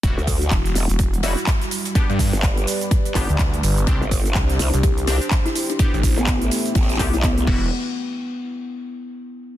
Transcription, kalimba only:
X:1
M:4/4
L:1/16
Q:"Swing 16ths" 1/4=125
K:Em
V:1 name="Kalimba"
z16 | z16 | z8 G4- G E E D | D z2 B, z6 z E B, B, z2 |
z16 |]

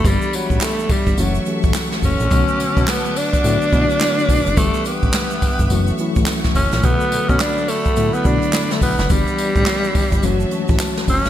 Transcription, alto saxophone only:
X:1
M:4/4
L:1/16
Q:"Swing 16ths" 1/4=106
K:Bm
V:1 name="Alto saxophone"
G,2 F,2 A,2 G,2 F,4 z2 C2- | C4 B,2 D8- D2 | A,2 B,8- B,2 z2 C2 | B,3 C D2 A,3 B, D3 A, B,2 |
G,8 F,4 z2 C2 |]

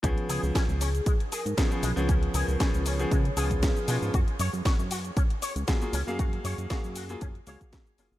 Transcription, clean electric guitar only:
X:1
M:4/4
L:1/8
Q:"Swing 16ths" 1/4=117
K:Dbmix
V:1 name="Clean electric guitar"
D A D D A, A D, A, | D A D D A, A D, A, | G d G G D d G, D | G d G G D d G, D |]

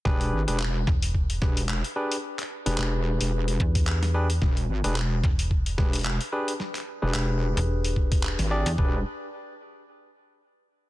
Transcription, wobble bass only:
X:1
M:4/4
L:1/16
Q:"Swing 16ths" 1/4=110
K:C
V:1 name="Wobble bass" clef=bass
E,,,2 ^G,,, E,,,3 z4 E,,,3 z3 | z3 E,,, E,,,3 E,,,3 z6 | E,,,2 ^G,,, E,,,3 z4 E,,,3 z3 | z3 E,,, E,,,3 z6 ^G,,,2 z |
E,,,2 z12 z2 |]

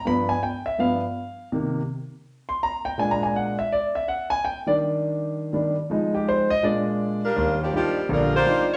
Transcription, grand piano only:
X:1
M:4/4
L:1/16
Q:"Swing" 1/4=164
K:Eb
V:1 name="Grand piano"
=b2 a2 g2 =e2 f8 | z8 z2 c'2 b2 g2 | (3a2 b2 a2 ^f2 _f2 d2 f2 ^f2 a2 | g2 d2 z12 |
z2 G2 c2 e2 d6- d z | z16 |]
V:2 name="Grand piano" clef=bass
[G,,F,=B,]2 z6 [G,,F,B,]2 z6 | [C,E,B,]2 z12 z2 | [B,,A,D]6 z8 z2 | z2 [E,G,D]8- [E,G,D]2 [E,G,D]2 z2 |
[F,A,E]6 z2 [B,,A,D]6 z2 | E,,4 [G,DEF]2 z2 [B,,,D,]4 [G,DEF]2 z2 |]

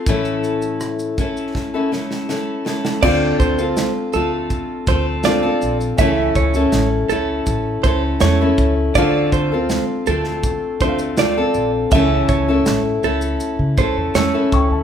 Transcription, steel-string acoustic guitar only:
X:1
M:4/4
L:1/16
Q:1/4=81
K:Dm
V:1 name="Steel-string acoustic guitar"
[A,,E,A,^CEA]6 [A,CEA]3 [A,CEA] [A,CEA]2 [A,CEA]2 [A,CEA]2 | [D,A,CFA]3 [CFA]3 [A,CFA]4 [A,CFA]2 [A,CFA] [CFA]3 | [^C,E,A,^CEA]3 [A,CEA]3 [A,CEA]4 [A,CEA]2 [A,CEA] [A,CEA]3 | [D,A,CFA]3 [CFA]3 [A,CFA]4 [A,CFA]2 [A,CFA] [CFA]3 |
[^C,E,A,^CEA]3 [A,CEA]3 [A,CEA]4 [A,CEA]2 [A,CEA] [A,CEA]3 |]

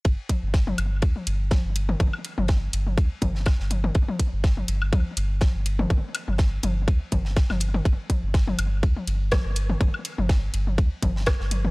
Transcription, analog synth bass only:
X:1
M:4/4
L:1/16
Q:"Swing 16ths" 1/4=123
K:Cdor
V:1 name="Analog synth bass" clef=bass
G,,, z2 G,,,3 G,,,2 D,, z G,,,3 G,,,3 | G,,, z2 G,,,3 G,,,2 D,, z G,,,3 G,,,3 | G,,, z2 G,,,3 G,,,2 D,, z G,,,3 G,,,3 | G,,, z2 G,,,3 G,,,2 D,, z G,,,3 G,,,3 |
G,,, z2 G,,,3 G,,,2 D,, z G,,,3 G,,,3 | G,,, z2 G,,,3 G,,,2 D,, z G,,,3 G,,,3 |]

